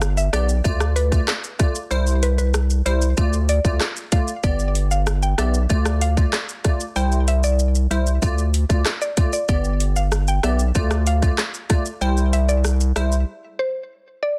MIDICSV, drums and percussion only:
0, 0, Header, 1, 2, 480
1, 0, Start_track
1, 0, Tempo, 631579
1, 1452, Time_signature, 4, 2, 24, 8
1, 10935, End_track
2, 0, Start_track
2, 0, Title_t, "Drums"
2, 12, Note_on_c, 9, 37, 97
2, 12, Note_on_c, 9, 82, 78
2, 88, Note_off_c, 9, 37, 0
2, 88, Note_off_c, 9, 82, 0
2, 133, Note_on_c, 9, 82, 66
2, 209, Note_off_c, 9, 82, 0
2, 252, Note_on_c, 9, 37, 102
2, 255, Note_on_c, 9, 42, 80
2, 255, Note_on_c, 9, 82, 57
2, 328, Note_off_c, 9, 37, 0
2, 331, Note_off_c, 9, 42, 0
2, 331, Note_off_c, 9, 82, 0
2, 372, Note_on_c, 9, 82, 77
2, 448, Note_off_c, 9, 82, 0
2, 492, Note_on_c, 9, 82, 81
2, 494, Note_on_c, 9, 36, 93
2, 568, Note_off_c, 9, 82, 0
2, 570, Note_off_c, 9, 36, 0
2, 611, Note_on_c, 9, 37, 108
2, 612, Note_on_c, 9, 82, 51
2, 687, Note_off_c, 9, 37, 0
2, 688, Note_off_c, 9, 82, 0
2, 733, Note_on_c, 9, 42, 72
2, 733, Note_on_c, 9, 82, 51
2, 809, Note_off_c, 9, 42, 0
2, 809, Note_off_c, 9, 82, 0
2, 852, Note_on_c, 9, 36, 94
2, 855, Note_on_c, 9, 82, 72
2, 928, Note_off_c, 9, 36, 0
2, 931, Note_off_c, 9, 82, 0
2, 972, Note_on_c, 9, 37, 105
2, 972, Note_on_c, 9, 39, 109
2, 973, Note_on_c, 9, 82, 67
2, 1048, Note_off_c, 9, 37, 0
2, 1048, Note_off_c, 9, 39, 0
2, 1049, Note_off_c, 9, 82, 0
2, 1094, Note_on_c, 9, 82, 61
2, 1170, Note_off_c, 9, 82, 0
2, 1212, Note_on_c, 9, 42, 72
2, 1212, Note_on_c, 9, 82, 52
2, 1213, Note_on_c, 9, 37, 83
2, 1214, Note_on_c, 9, 36, 99
2, 1288, Note_off_c, 9, 42, 0
2, 1288, Note_off_c, 9, 82, 0
2, 1289, Note_off_c, 9, 37, 0
2, 1290, Note_off_c, 9, 36, 0
2, 1332, Note_on_c, 9, 82, 77
2, 1408, Note_off_c, 9, 82, 0
2, 1453, Note_on_c, 9, 82, 77
2, 1529, Note_off_c, 9, 82, 0
2, 1571, Note_on_c, 9, 82, 57
2, 1647, Note_off_c, 9, 82, 0
2, 1693, Note_on_c, 9, 42, 69
2, 1693, Note_on_c, 9, 82, 49
2, 1769, Note_off_c, 9, 42, 0
2, 1769, Note_off_c, 9, 82, 0
2, 1813, Note_on_c, 9, 82, 84
2, 1889, Note_off_c, 9, 82, 0
2, 1931, Note_on_c, 9, 37, 99
2, 1931, Note_on_c, 9, 82, 79
2, 2007, Note_off_c, 9, 37, 0
2, 2007, Note_off_c, 9, 82, 0
2, 2053, Note_on_c, 9, 82, 64
2, 2129, Note_off_c, 9, 82, 0
2, 2174, Note_on_c, 9, 42, 78
2, 2174, Note_on_c, 9, 82, 55
2, 2250, Note_off_c, 9, 42, 0
2, 2250, Note_off_c, 9, 82, 0
2, 2292, Note_on_c, 9, 82, 78
2, 2368, Note_off_c, 9, 82, 0
2, 2412, Note_on_c, 9, 82, 82
2, 2414, Note_on_c, 9, 36, 91
2, 2488, Note_off_c, 9, 82, 0
2, 2490, Note_off_c, 9, 36, 0
2, 2532, Note_on_c, 9, 82, 54
2, 2608, Note_off_c, 9, 82, 0
2, 2651, Note_on_c, 9, 42, 71
2, 2651, Note_on_c, 9, 82, 54
2, 2727, Note_off_c, 9, 42, 0
2, 2727, Note_off_c, 9, 82, 0
2, 2772, Note_on_c, 9, 36, 94
2, 2773, Note_on_c, 9, 82, 73
2, 2848, Note_off_c, 9, 36, 0
2, 2849, Note_off_c, 9, 82, 0
2, 2892, Note_on_c, 9, 37, 111
2, 2892, Note_on_c, 9, 39, 108
2, 2893, Note_on_c, 9, 82, 68
2, 2968, Note_off_c, 9, 37, 0
2, 2968, Note_off_c, 9, 39, 0
2, 2969, Note_off_c, 9, 82, 0
2, 3013, Note_on_c, 9, 82, 57
2, 3089, Note_off_c, 9, 82, 0
2, 3131, Note_on_c, 9, 42, 72
2, 3131, Note_on_c, 9, 82, 54
2, 3133, Note_on_c, 9, 36, 93
2, 3207, Note_off_c, 9, 42, 0
2, 3207, Note_off_c, 9, 82, 0
2, 3209, Note_off_c, 9, 36, 0
2, 3251, Note_on_c, 9, 82, 77
2, 3327, Note_off_c, 9, 82, 0
2, 3372, Note_on_c, 9, 36, 122
2, 3372, Note_on_c, 9, 82, 80
2, 3448, Note_off_c, 9, 36, 0
2, 3448, Note_off_c, 9, 82, 0
2, 3490, Note_on_c, 9, 82, 58
2, 3566, Note_off_c, 9, 82, 0
2, 3612, Note_on_c, 9, 42, 69
2, 3612, Note_on_c, 9, 82, 50
2, 3688, Note_off_c, 9, 42, 0
2, 3688, Note_off_c, 9, 82, 0
2, 3733, Note_on_c, 9, 82, 80
2, 3809, Note_off_c, 9, 82, 0
2, 3852, Note_on_c, 9, 37, 97
2, 3852, Note_on_c, 9, 82, 78
2, 3928, Note_off_c, 9, 37, 0
2, 3928, Note_off_c, 9, 82, 0
2, 3972, Note_on_c, 9, 82, 67
2, 4048, Note_off_c, 9, 82, 0
2, 4090, Note_on_c, 9, 37, 104
2, 4093, Note_on_c, 9, 42, 82
2, 4093, Note_on_c, 9, 82, 56
2, 4166, Note_off_c, 9, 37, 0
2, 4169, Note_off_c, 9, 42, 0
2, 4169, Note_off_c, 9, 82, 0
2, 4211, Note_on_c, 9, 82, 79
2, 4287, Note_off_c, 9, 82, 0
2, 4330, Note_on_c, 9, 82, 80
2, 4334, Note_on_c, 9, 36, 89
2, 4406, Note_off_c, 9, 82, 0
2, 4410, Note_off_c, 9, 36, 0
2, 4450, Note_on_c, 9, 37, 109
2, 4450, Note_on_c, 9, 82, 55
2, 4526, Note_off_c, 9, 37, 0
2, 4526, Note_off_c, 9, 82, 0
2, 4571, Note_on_c, 9, 42, 72
2, 4571, Note_on_c, 9, 82, 50
2, 4647, Note_off_c, 9, 42, 0
2, 4647, Note_off_c, 9, 82, 0
2, 4691, Note_on_c, 9, 36, 99
2, 4692, Note_on_c, 9, 82, 75
2, 4767, Note_off_c, 9, 36, 0
2, 4768, Note_off_c, 9, 82, 0
2, 4810, Note_on_c, 9, 37, 110
2, 4810, Note_on_c, 9, 39, 109
2, 4811, Note_on_c, 9, 82, 72
2, 4886, Note_off_c, 9, 37, 0
2, 4886, Note_off_c, 9, 39, 0
2, 4887, Note_off_c, 9, 82, 0
2, 4932, Note_on_c, 9, 82, 58
2, 5008, Note_off_c, 9, 82, 0
2, 5051, Note_on_c, 9, 37, 88
2, 5051, Note_on_c, 9, 42, 75
2, 5051, Note_on_c, 9, 82, 56
2, 5053, Note_on_c, 9, 36, 97
2, 5127, Note_off_c, 9, 37, 0
2, 5127, Note_off_c, 9, 42, 0
2, 5127, Note_off_c, 9, 82, 0
2, 5129, Note_off_c, 9, 36, 0
2, 5171, Note_on_c, 9, 82, 73
2, 5247, Note_off_c, 9, 82, 0
2, 5291, Note_on_c, 9, 82, 73
2, 5367, Note_off_c, 9, 82, 0
2, 5410, Note_on_c, 9, 82, 57
2, 5486, Note_off_c, 9, 82, 0
2, 5531, Note_on_c, 9, 42, 68
2, 5531, Note_on_c, 9, 82, 51
2, 5607, Note_off_c, 9, 42, 0
2, 5607, Note_off_c, 9, 82, 0
2, 5652, Note_on_c, 9, 82, 83
2, 5728, Note_off_c, 9, 82, 0
2, 5770, Note_on_c, 9, 82, 76
2, 5846, Note_off_c, 9, 82, 0
2, 5891, Note_on_c, 9, 82, 64
2, 5967, Note_off_c, 9, 82, 0
2, 6013, Note_on_c, 9, 42, 78
2, 6013, Note_on_c, 9, 82, 57
2, 6089, Note_off_c, 9, 42, 0
2, 6089, Note_off_c, 9, 82, 0
2, 6131, Note_on_c, 9, 82, 77
2, 6207, Note_off_c, 9, 82, 0
2, 6251, Note_on_c, 9, 82, 78
2, 6253, Note_on_c, 9, 36, 95
2, 6327, Note_off_c, 9, 82, 0
2, 6329, Note_off_c, 9, 36, 0
2, 6371, Note_on_c, 9, 82, 53
2, 6447, Note_off_c, 9, 82, 0
2, 6491, Note_on_c, 9, 42, 73
2, 6491, Note_on_c, 9, 82, 54
2, 6567, Note_off_c, 9, 42, 0
2, 6567, Note_off_c, 9, 82, 0
2, 6611, Note_on_c, 9, 36, 96
2, 6612, Note_on_c, 9, 82, 72
2, 6687, Note_off_c, 9, 36, 0
2, 6688, Note_off_c, 9, 82, 0
2, 6730, Note_on_c, 9, 37, 111
2, 6730, Note_on_c, 9, 39, 109
2, 6731, Note_on_c, 9, 82, 68
2, 6806, Note_off_c, 9, 37, 0
2, 6806, Note_off_c, 9, 39, 0
2, 6807, Note_off_c, 9, 82, 0
2, 6852, Note_on_c, 9, 82, 57
2, 6928, Note_off_c, 9, 82, 0
2, 6970, Note_on_c, 9, 42, 76
2, 6970, Note_on_c, 9, 82, 55
2, 6972, Note_on_c, 9, 36, 94
2, 7046, Note_off_c, 9, 42, 0
2, 7046, Note_off_c, 9, 82, 0
2, 7048, Note_off_c, 9, 36, 0
2, 7090, Note_on_c, 9, 82, 75
2, 7166, Note_off_c, 9, 82, 0
2, 7210, Note_on_c, 9, 82, 75
2, 7211, Note_on_c, 9, 36, 119
2, 7286, Note_off_c, 9, 82, 0
2, 7287, Note_off_c, 9, 36, 0
2, 7329, Note_on_c, 9, 82, 56
2, 7405, Note_off_c, 9, 82, 0
2, 7451, Note_on_c, 9, 42, 71
2, 7451, Note_on_c, 9, 82, 53
2, 7527, Note_off_c, 9, 42, 0
2, 7527, Note_off_c, 9, 82, 0
2, 7572, Note_on_c, 9, 82, 85
2, 7648, Note_off_c, 9, 82, 0
2, 7689, Note_on_c, 9, 82, 76
2, 7690, Note_on_c, 9, 37, 97
2, 7765, Note_off_c, 9, 82, 0
2, 7766, Note_off_c, 9, 37, 0
2, 7810, Note_on_c, 9, 82, 68
2, 7886, Note_off_c, 9, 82, 0
2, 7929, Note_on_c, 9, 37, 106
2, 7932, Note_on_c, 9, 42, 81
2, 7932, Note_on_c, 9, 82, 59
2, 8005, Note_off_c, 9, 37, 0
2, 8008, Note_off_c, 9, 42, 0
2, 8008, Note_off_c, 9, 82, 0
2, 8050, Note_on_c, 9, 82, 81
2, 8126, Note_off_c, 9, 82, 0
2, 8170, Note_on_c, 9, 82, 80
2, 8173, Note_on_c, 9, 36, 94
2, 8246, Note_off_c, 9, 82, 0
2, 8249, Note_off_c, 9, 36, 0
2, 8289, Note_on_c, 9, 37, 114
2, 8290, Note_on_c, 9, 82, 53
2, 8365, Note_off_c, 9, 37, 0
2, 8366, Note_off_c, 9, 82, 0
2, 8410, Note_on_c, 9, 42, 74
2, 8410, Note_on_c, 9, 82, 52
2, 8486, Note_off_c, 9, 42, 0
2, 8486, Note_off_c, 9, 82, 0
2, 8531, Note_on_c, 9, 36, 93
2, 8532, Note_on_c, 9, 82, 72
2, 8607, Note_off_c, 9, 36, 0
2, 8608, Note_off_c, 9, 82, 0
2, 8650, Note_on_c, 9, 37, 110
2, 8650, Note_on_c, 9, 39, 110
2, 8651, Note_on_c, 9, 82, 69
2, 8726, Note_off_c, 9, 37, 0
2, 8726, Note_off_c, 9, 39, 0
2, 8727, Note_off_c, 9, 82, 0
2, 8771, Note_on_c, 9, 82, 56
2, 8847, Note_off_c, 9, 82, 0
2, 8890, Note_on_c, 9, 37, 88
2, 8890, Note_on_c, 9, 42, 77
2, 8890, Note_on_c, 9, 82, 55
2, 8893, Note_on_c, 9, 36, 99
2, 8966, Note_off_c, 9, 37, 0
2, 8966, Note_off_c, 9, 42, 0
2, 8966, Note_off_c, 9, 82, 0
2, 8969, Note_off_c, 9, 36, 0
2, 9010, Note_on_c, 9, 82, 74
2, 9086, Note_off_c, 9, 82, 0
2, 9132, Note_on_c, 9, 82, 77
2, 9208, Note_off_c, 9, 82, 0
2, 9250, Note_on_c, 9, 82, 57
2, 9326, Note_off_c, 9, 82, 0
2, 9372, Note_on_c, 9, 42, 71
2, 9372, Note_on_c, 9, 82, 52
2, 9448, Note_off_c, 9, 42, 0
2, 9448, Note_off_c, 9, 82, 0
2, 9492, Note_on_c, 9, 82, 82
2, 9568, Note_off_c, 9, 82, 0
2, 9610, Note_on_c, 9, 82, 77
2, 9611, Note_on_c, 9, 37, 93
2, 9686, Note_off_c, 9, 82, 0
2, 9687, Note_off_c, 9, 37, 0
2, 9732, Note_on_c, 9, 82, 66
2, 9808, Note_off_c, 9, 82, 0
2, 9849, Note_on_c, 9, 37, 105
2, 9852, Note_on_c, 9, 42, 79
2, 9852, Note_on_c, 9, 82, 57
2, 9925, Note_off_c, 9, 37, 0
2, 9928, Note_off_c, 9, 42, 0
2, 9928, Note_off_c, 9, 82, 0
2, 9971, Note_on_c, 9, 82, 78
2, 10047, Note_off_c, 9, 82, 0
2, 10935, End_track
0, 0, End_of_file